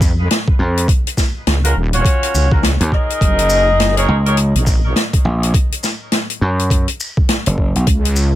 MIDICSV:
0, 0, Header, 1, 5, 480
1, 0, Start_track
1, 0, Tempo, 582524
1, 727, Time_signature, 4, 2, 24, 8
1, 6885, End_track
2, 0, Start_track
2, 0, Title_t, "Horn section"
2, 0, Program_c, 0, 61
2, 1354, Note_on_c, 0, 61, 100
2, 1354, Note_on_c, 0, 65, 95
2, 1354, Note_on_c, 0, 66, 88
2, 1354, Note_on_c, 0, 70, 110
2, 1436, Note_off_c, 0, 61, 0
2, 1436, Note_off_c, 0, 70, 0
2, 1437, Note_off_c, 0, 65, 0
2, 1437, Note_off_c, 0, 66, 0
2, 1594, Note_on_c, 0, 61, 88
2, 1594, Note_on_c, 0, 65, 83
2, 1595, Note_on_c, 0, 66, 86
2, 1595, Note_on_c, 0, 73, 101
2, 2044, Note_off_c, 0, 61, 0
2, 2044, Note_off_c, 0, 65, 0
2, 2045, Note_off_c, 0, 66, 0
2, 2045, Note_off_c, 0, 73, 0
2, 2072, Note_on_c, 0, 61, 80
2, 2073, Note_on_c, 0, 65, 70
2, 2073, Note_on_c, 0, 66, 73
2, 2073, Note_on_c, 0, 70, 85
2, 2156, Note_off_c, 0, 61, 0
2, 2156, Note_off_c, 0, 65, 0
2, 2156, Note_off_c, 0, 66, 0
2, 2156, Note_off_c, 0, 70, 0
2, 2406, Note_on_c, 0, 75, 117
2, 2408, Note_on_c, 0, 63, 102
2, 2408, Note_on_c, 0, 68, 96
2, 2408, Note_on_c, 0, 70, 98
2, 3238, Note_off_c, 0, 70, 0
2, 3238, Note_off_c, 0, 75, 0
2, 3239, Note_off_c, 0, 63, 0
2, 3239, Note_off_c, 0, 68, 0
2, 3270, Note_on_c, 0, 63, 92
2, 3270, Note_on_c, 0, 73, 101
2, 3271, Note_on_c, 0, 68, 87
2, 3271, Note_on_c, 0, 70, 87
2, 3426, Note_off_c, 0, 63, 0
2, 3426, Note_off_c, 0, 68, 0
2, 3426, Note_off_c, 0, 73, 0
2, 3427, Note_off_c, 0, 70, 0
2, 3510, Note_on_c, 0, 73, 96
2, 3511, Note_on_c, 0, 63, 86
2, 3511, Note_on_c, 0, 68, 77
2, 3512, Note_on_c, 0, 70, 81
2, 3595, Note_off_c, 0, 63, 0
2, 3595, Note_off_c, 0, 68, 0
2, 3595, Note_off_c, 0, 70, 0
2, 3595, Note_off_c, 0, 73, 0
2, 6885, End_track
3, 0, Start_track
3, 0, Title_t, "Slap bass"
3, 0, Program_c, 1, 36
3, 487, Note_on_c, 1, 41, 98
3, 712, Note_off_c, 1, 41, 0
3, 2311, Note_on_c, 1, 39, 98
3, 2391, Note_off_c, 1, 39, 0
3, 3365, Note_on_c, 1, 37, 92
3, 3729, Note_off_c, 1, 37, 0
3, 4324, Note_on_c, 1, 34, 95
3, 4550, Note_off_c, 1, 34, 0
3, 5285, Note_on_c, 1, 42, 96
3, 5649, Note_off_c, 1, 42, 0
3, 6152, Note_on_c, 1, 30, 95
3, 6369, Note_off_c, 1, 30, 0
3, 6391, Note_on_c, 1, 35, 102
3, 6471, Note_off_c, 1, 35, 0
3, 6885, End_track
4, 0, Start_track
4, 0, Title_t, "Wobble bass"
4, 0, Program_c, 2, 39
4, 0, Note_on_c, 2, 41, 94
4, 233, Note_off_c, 2, 41, 0
4, 1211, Note_on_c, 2, 37, 101
4, 1434, Note_off_c, 2, 37, 0
4, 1448, Note_on_c, 2, 27, 91
4, 1672, Note_off_c, 2, 27, 0
4, 1930, Note_on_c, 2, 37, 102
4, 2291, Note_off_c, 2, 37, 0
4, 2647, Note_on_c, 2, 30, 95
4, 3352, Note_off_c, 2, 30, 0
4, 3751, Note_on_c, 2, 34, 99
4, 4071, Note_off_c, 2, 34, 0
4, 6486, Note_on_c, 2, 37, 99
4, 6885, Note_off_c, 2, 37, 0
4, 6885, End_track
5, 0, Start_track
5, 0, Title_t, "Drums"
5, 6, Note_on_c, 9, 36, 111
5, 10, Note_on_c, 9, 37, 53
5, 13, Note_on_c, 9, 82, 76
5, 89, Note_off_c, 9, 36, 0
5, 92, Note_off_c, 9, 37, 0
5, 95, Note_off_c, 9, 82, 0
5, 252, Note_on_c, 9, 42, 95
5, 256, Note_on_c, 9, 38, 127
5, 334, Note_off_c, 9, 42, 0
5, 338, Note_off_c, 9, 38, 0
5, 392, Note_on_c, 9, 36, 117
5, 474, Note_off_c, 9, 36, 0
5, 638, Note_on_c, 9, 42, 55
5, 721, Note_off_c, 9, 42, 0
5, 727, Note_on_c, 9, 36, 127
5, 731, Note_on_c, 9, 42, 79
5, 809, Note_off_c, 9, 36, 0
5, 813, Note_off_c, 9, 42, 0
5, 881, Note_on_c, 9, 42, 75
5, 963, Note_off_c, 9, 42, 0
5, 967, Note_on_c, 9, 36, 66
5, 967, Note_on_c, 9, 37, 32
5, 970, Note_on_c, 9, 38, 60
5, 970, Note_on_c, 9, 82, 69
5, 1050, Note_off_c, 9, 36, 0
5, 1050, Note_off_c, 9, 37, 0
5, 1052, Note_off_c, 9, 38, 0
5, 1052, Note_off_c, 9, 82, 0
5, 1210, Note_on_c, 9, 42, 81
5, 1212, Note_on_c, 9, 38, 126
5, 1292, Note_off_c, 9, 42, 0
5, 1295, Note_off_c, 9, 38, 0
5, 1356, Note_on_c, 9, 42, 70
5, 1438, Note_off_c, 9, 42, 0
5, 1590, Note_on_c, 9, 42, 56
5, 1673, Note_off_c, 9, 42, 0
5, 1686, Note_on_c, 9, 36, 115
5, 1692, Note_on_c, 9, 42, 90
5, 1769, Note_off_c, 9, 36, 0
5, 1774, Note_off_c, 9, 42, 0
5, 1837, Note_on_c, 9, 42, 73
5, 1919, Note_off_c, 9, 42, 0
5, 1935, Note_on_c, 9, 82, 74
5, 2017, Note_off_c, 9, 82, 0
5, 2072, Note_on_c, 9, 36, 111
5, 2155, Note_off_c, 9, 36, 0
5, 2168, Note_on_c, 9, 38, 127
5, 2178, Note_on_c, 9, 42, 98
5, 2250, Note_off_c, 9, 38, 0
5, 2260, Note_off_c, 9, 42, 0
5, 2312, Note_on_c, 9, 42, 58
5, 2394, Note_off_c, 9, 42, 0
5, 2406, Note_on_c, 9, 36, 64
5, 2409, Note_on_c, 9, 37, 34
5, 2488, Note_off_c, 9, 36, 0
5, 2492, Note_off_c, 9, 37, 0
5, 2556, Note_on_c, 9, 42, 48
5, 2639, Note_off_c, 9, 42, 0
5, 2646, Note_on_c, 9, 36, 116
5, 2649, Note_on_c, 9, 42, 82
5, 2728, Note_off_c, 9, 36, 0
5, 2732, Note_off_c, 9, 42, 0
5, 2790, Note_on_c, 9, 42, 65
5, 2873, Note_off_c, 9, 42, 0
5, 2881, Note_on_c, 9, 82, 72
5, 2963, Note_off_c, 9, 82, 0
5, 3129, Note_on_c, 9, 42, 84
5, 3132, Note_on_c, 9, 38, 117
5, 3212, Note_off_c, 9, 42, 0
5, 3215, Note_off_c, 9, 38, 0
5, 3273, Note_on_c, 9, 42, 69
5, 3355, Note_off_c, 9, 42, 0
5, 3512, Note_on_c, 9, 42, 51
5, 3595, Note_off_c, 9, 42, 0
5, 3601, Note_on_c, 9, 42, 83
5, 3683, Note_off_c, 9, 42, 0
5, 3754, Note_on_c, 9, 42, 63
5, 3836, Note_off_c, 9, 42, 0
5, 3844, Note_on_c, 9, 36, 99
5, 3846, Note_on_c, 9, 82, 74
5, 3848, Note_on_c, 9, 37, 56
5, 3927, Note_off_c, 9, 36, 0
5, 3929, Note_off_c, 9, 82, 0
5, 3930, Note_off_c, 9, 37, 0
5, 4087, Note_on_c, 9, 38, 127
5, 4090, Note_on_c, 9, 42, 88
5, 4169, Note_off_c, 9, 38, 0
5, 4172, Note_off_c, 9, 42, 0
5, 4230, Note_on_c, 9, 36, 110
5, 4231, Note_on_c, 9, 42, 69
5, 4313, Note_off_c, 9, 36, 0
5, 4313, Note_off_c, 9, 42, 0
5, 4475, Note_on_c, 9, 42, 55
5, 4557, Note_off_c, 9, 42, 0
5, 4564, Note_on_c, 9, 36, 122
5, 4566, Note_on_c, 9, 42, 88
5, 4647, Note_off_c, 9, 36, 0
5, 4649, Note_off_c, 9, 42, 0
5, 4716, Note_on_c, 9, 42, 60
5, 4798, Note_off_c, 9, 42, 0
5, 4804, Note_on_c, 9, 37, 37
5, 4808, Note_on_c, 9, 82, 81
5, 4811, Note_on_c, 9, 38, 61
5, 4886, Note_off_c, 9, 37, 0
5, 4890, Note_off_c, 9, 82, 0
5, 4893, Note_off_c, 9, 38, 0
5, 5041, Note_on_c, 9, 42, 84
5, 5042, Note_on_c, 9, 38, 116
5, 5124, Note_off_c, 9, 38, 0
5, 5124, Note_off_c, 9, 42, 0
5, 5190, Note_on_c, 9, 42, 65
5, 5272, Note_off_c, 9, 42, 0
5, 5434, Note_on_c, 9, 42, 54
5, 5516, Note_off_c, 9, 42, 0
5, 5524, Note_on_c, 9, 36, 106
5, 5527, Note_on_c, 9, 42, 84
5, 5606, Note_off_c, 9, 36, 0
5, 5610, Note_off_c, 9, 42, 0
5, 5668, Note_on_c, 9, 42, 72
5, 5750, Note_off_c, 9, 42, 0
5, 5770, Note_on_c, 9, 82, 73
5, 5853, Note_off_c, 9, 82, 0
5, 5910, Note_on_c, 9, 36, 99
5, 5992, Note_off_c, 9, 36, 0
5, 6004, Note_on_c, 9, 42, 91
5, 6006, Note_on_c, 9, 38, 115
5, 6087, Note_off_c, 9, 42, 0
5, 6089, Note_off_c, 9, 38, 0
5, 6148, Note_on_c, 9, 42, 66
5, 6230, Note_off_c, 9, 42, 0
5, 6244, Note_on_c, 9, 36, 63
5, 6327, Note_off_c, 9, 36, 0
5, 6390, Note_on_c, 9, 42, 50
5, 6473, Note_off_c, 9, 42, 0
5, 6484, Note_on_c, 9, 36, 111
5, 6484, Note_on_c, 9, 42, 95
5, 6566, Note_off_c, 9, 42, 0
5, 6567, Note_off_c, 9, 36, 0
5, 6634, Note_on_c, 9, 42, 65
5, 6717, Note_off_c, 9, 42, 0
5, 6725, Note_on_c, 9, 82, 70
5, 6807, Note_off_c, 9, 82, 0
5, 6885, End_track
0, 0, End_of_file